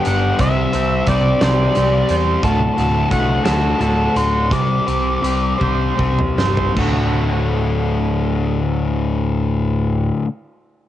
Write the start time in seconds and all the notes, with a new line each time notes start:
Already playing: G3 B3 D4 G4
0.05 G1 G4 F#5, closed hi-hat
0.39 C2 C3 G3 C4 G4 C5 E5, kick, closed hi-hat
0.73 C2 C4 G4 C5, closed hi-hat
1.07 C2 G3 C4 G4 C5 D5, kick, closed hi-hat
1.41 C2 C3 G3 C4 G4 C5 D5, snare, closed hi-hat
1.75 C2 G3 C4 G4 C5, closed hi-hat
2.09 E2 C5, closed hi-hat
2.43 D1 D2 A2 D3 A3 F#4 A5, kick, closed hi-hat
2.77 D1 D3 A3 F#4, closed hi-hat
3.11 C2 A2 D3 A3 F#4 F#5, kick, closed hi-hat
3.44 D2 A2 D3 A3 F#4 A5, snare, closed hi-hat
3.79 D1 A2 D3 A3 F#4 A5, closed hi-hat
4.16 D1 F#4 C6, closed hi-hat
4.50 C2 C3 G3 C4 G4 C5 D6, kick, closed hi-hat
4.86 C2 C4 G4 C5, closed hi-hat
5.22 C2 G3 C4 G4 C5, closed hi-hat
5.58 C2 C3 G3 C4 G4 C5, kick
5.63 C5
5.96 C2 G3 C4 G4 C5, kick
6.19 mid tom
6.38 G1 C5, snare
6.57 floor tom
6.74 D1 D2 A2 D3 A3, kick, crash
6.79 F#4